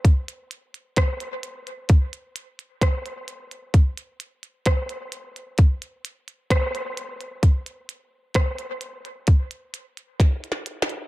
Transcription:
0.05 kick, closed hi-hat
0.28 closed hi-hat
0.51 closed hi-hat
0.74 closed hi-hat
0.96 kick, cross-stick, closed hi-hat
1.20 closed hi-hat
1.43 closed hi-hat
1.67 closed hi-hat
1.89 kick, closed hi-hat
2.13 closed hi-hat
2.36 closed hi-hat
2.59 closed hi-hat
2.81 kick, cross-stick, closed hi-hat
3.06 closed hi-hat
3.28 closed hi-hat
3.51 closed hi-hat
3.74 kick, closed hi-hat
3.98 closed hi-hat
4.20 closed hi-hat
4.43 closed hi-hat
4.66 kick, cross-stick, closed hi-hat
4.89 closed hi-hat
5.12 closed hi-hat
5.36 closed hi-hat
5.58 kick, closed hi-hat
5.82 closed hi-hat
6.05 closed hi-hat
6.28 closed hi-hat
6.50 kick, cross-stick, closed hi-hat
6.75 closed hi-hat
6.97 closed hi-hat
7.21 closed hi-hat
7.43 kick, closed hi-hat
7.66 closed hi-hat
7.89 closed hi-hat
8.34 kick, cross-stick, closed hi-hat
8.59 closed hi-hat
8.81 closed hi-hat
9.05 closed hi-hat
9.27 kick, closed hi-hat
9.51 closed hi-hat
9.74 closed hi-hat
9.97 closed hi-hat
10.20 kick, snare, closed hi-hat
10.44 closed hi-hat
10.52 snare
10.66 closed hi-hat
10.82 snare
10.89 closed hi-hat

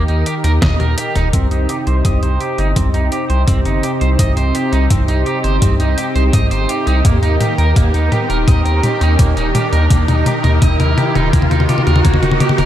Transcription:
Already playing: D#3 D#4 G4 A#4
0.08 D#2 D#4, closed hi-hat
0.26 G4, closed hi-hat
0.44 D#2 A#4, snare, closed hi-hat
0.62 D#2 D#5, kick, snare, closed hi-hat, high tom
0.80 D#2 A#4, closed hi-hat, high tom
0.98 G4, closed hi-hat
1.15 D#1 D#4, closed hi-hat, mid tom
1.33 C2 C3 C4 D#4 G4, kick, closed hi-hat, mid tom, riser
1.51 C2 D#4, closed hi-hat
1.69 G4, closed hi-hat
1.87 C2 C5, closed hi-hat
2.05 C2 D#5, kick, closed hi-hat, mid tom
2.23 C2 C5, closed hi-hat
2.40 G4, closed hi-hat
2.58 G1 D#4, closed hi-hat
2.76 C2 C4, kick, closed hi-hat, mid tom
2.94 C2 D#4, closed hi-hat
3.12 G4, closed hi-hat
3.30 C2 C5, closed hi-hat
3.48 C2 C4, kick, closed hi-hat, mid tom
3.65 G1 D#4, closed hi-hat
3.83 G4, closed hi-hat
4.01 C2 C5, closed hi-hat
4.19 C2 D#5, kick, closed hi-hat, mid tom
4.37 C2 C5, closed hi-hat
4.55 G4, closed hi-hat
4.73 C2 D#4, closed hi-hat
4.90 C2 C4, kick, closed hi-hat, mid tom
5.08 C2 D#4, closed hi-hat
5.26 G4, closed hi-hat
5.44 G1 C5, closed hi-hat
5.62 C2 C4, kick, closed hi-hat, mid tom
5.80 C2 D#4, closed hi-hat
5.98 G4, closed hi-hat
6.15 C2 C5, closed hi-hat
6.33 C2 D#5, kick, closed hi-hat, mid tom
6.51 G1 C5, closed hi-hat
6.69 G4, closed hi-hat
6.87 C2 D#4, closed hi-hat
7.05 D#2 D#3 A#3 A#4, kick, closed hi-hat, mid tom
7.23 D#2 D#4, closed hi-hat
7.41 G4, closed hi-hat, mid tom
7.58 D#2 A#4, closed hi-hat
7.76 D#2 A#3, kick, closed hi-hat, mid tom
7.94 D#2 D#4, closed hi-hat
8.12 G4, closed hi-hat, mid tom
8.30 D#1 A#4, closed hi-hat
8.48 D#2 D#5, kick, closed hi-hat, mid tom
8.65 D#2 A#4, closed hi-hat
8.83 G4, closed hi-hat, mid tom
9.01 D#2 D#4, closed hi-hat
9.19 D#2 A#3, kick, closed hi-hat, mid tom
9.37 D#1 D#4, closed hi-hat
9.55 G4, closed hi-hat, mid tom
9.73 D#2 A#4, closed hi-hat
9.90 D#2 A#3, kick, closed hi-hat, mid tom
10.08 D#2 D#4, closed hi-hat, mid tom
10.26 G4, closed hi-hat, mid tom
10.44 D#2 A#4, closed hi-hat, mid tom
10.62 D#2 D#5, kick, closed hi-hat, mid tom
10.80 D#2 A#4, closed hi-hat, mid tom
10.98 G4, closed hi-hat, mid tom
11.15 D#1 D#4, closed hi-hat, mid tom
11.33 D#2 A#3, kick, closed hi-hat, mid tom
11.42 mid tom
11.51 D#2 D#4, closed hi-hat, mid tom
11.60 mid tom
11.69 G4, closed hi-hat, mid tom
11.78 mid tom
11.87 D#2 A#4, closed hi-hat, mid tom
11.96 mid tom
12.05 D#2 A#3, kick, closed hi-hat, mid tom
12.14 mid tom
12.23 D#1 D#4, closed hi-hat, mid tom
12.32 mid tom
12.40 G4, closed hi-hat, mid tom
12.49 mid tom
12.58 D#1 A#4, closed hi-hat, mid tom

